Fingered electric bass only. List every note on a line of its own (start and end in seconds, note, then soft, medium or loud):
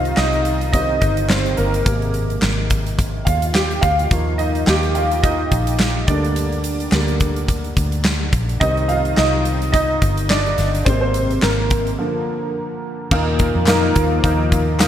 0.00 0.14 C2 medium
0.17 0.98 C2 medium
1.02 1.54 G1 medium
1.58 1.84 G1 medium
1.86 2.38 G#1 medium
2.42 3.23 G#1 medium
3.27 3.79 D#2 medium
3.83 4.09 D2 medium
4.11 4.63 D#2 medium
4.67 5.48 D#2 medium
5.52 6.04 A#1 medium
6.08 6.88 D2 medium
6.92 7.73 D2 medium
7.77 8.29 D2 medium
8.33 8.59 A#1 medium
8.61 9.13 C2 medium
9.18 9.98 C2 medium
10.02 10.54 G1 medium
10.58 10.84 G1 medium
10.87 11.39 G#1 medium
11.43 11.95 G#1 medium
13.11 13.52 D#2 medium
13.55 13.93 F2 medium
13.96 14.22 D#2 medium
14.24 14.88 D#2 medium